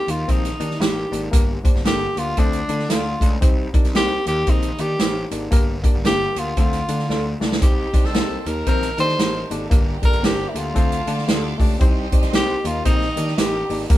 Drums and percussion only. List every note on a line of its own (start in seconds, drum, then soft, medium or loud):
0.08 closed hi-hat medium
0.28 kick medium
0.28 closed hi-hat medium
0.44 snare soft
0.44 closed hi-hat medium
0.60 closed hi-hat medium
0.71 snare soft
0.81 snare loud
0.81 closed hi-hat medium
1.13 closed hi-hat medium
1.33 kick loud
1.33 closed hi-hat medium
1.65 kick loud
1.65 closed hi-hat medium
1.75 snare soft
1.85 snare loud
1.85 closed hi-hat medium
2.17 closed hi-hat medium
2.37 kick medium
2.37 closed hi-hat medium
2.53 closed hi-hat medium
2.69 closed hi-hat medium
2.79 snare soft
2.90 snare loud
2.90 closed hi-hat medium
3.21 kick medium
3.21 closed hi-hat medium
3.42 kick loud
3.42 closed hi-hat medium
3.74 kick loud
3.74 closed hi-hat medium
3.84 snare soft
3.84 closed hi-hat soft
3.95 snare loud
3.95 closed hi-hat medium
4.26 closed hi-hat medium
4.47 kick medium
4.47 closed hi-hat medium
4.62 closed hi-hat medium
4.78 closed hi-hat medium
4.99 snare loud
4.99 closed hi-hat medium
5.31 closed hi-hat medium
5.52 kick loud
5.52 closed hi-hat medium
5.84 kick loud
5.84 closed hi-hat medium
6.05 snare loud
6.05 closed hi-hat medium
6.36 closed hi-hat medium
6.57 kick medium
6.57 closed hi-hat medium
6.72 snare soft
6.72 closed hi-hat medium
6.88 closed hi-hat medium
6.99 snare soft
7.10 snare medium
7.41 snare medium
7.52 snare medium
7.62 kick loud
7.62 closed hi-hat loud
7.94 kick loud
7.94 closed hi-hat medium
8.04 snare soft
8.14 snare loud
8.14 closed hi-hat medium
8.46 closed hi-hat medium
8.66 kick medium
8.66 closed hi-hat medium
8.82 snare soft
8.82 closed hi-hat medium
8.98 closed hi-hat medium
9.09 snare soft
9.19 snare loud
9.19 closed hi-hat medium
9.51 closed hi-hat medium
9.71 kick loud
9.71 closed hi-hat medium
10.03 kick loud
10.03 closed hi-hat medium
10.13 closed hi-hat soft
10.24 snare loud
10.24 closed hi-hat medium
10.55 closed hi-hat medium
10.76 kick medium
10.76 closed hi-hat medium
10.92 closed hi-hat medium
11.07 closed hi-hat medium
11.18 snare soft
11.28 snare loud
11.28 closed hi-hat medium
11.60 kick medium
11.60 open hi-hat medium
11.81 kick loud
11.81 closed hi-hat loud
12.12 kick loud
12.12 closed hi-hat medium
12.22 snare soft
12.22 closed hi-hat soft
12.33 snare loud
12.33 closed hi-hat medium
12.65 closed hi-hat medium
12.85 kick medium
12.85 closed hi-hat medium
13.01 snare soft
13.17 closed hi-hat medium
13.28 snare soft
13.38 snare loud
13.38 closed hi-hat medium
13.70 open hi-hat medium
13.90 kick loud
13.90 closed hi-hat loud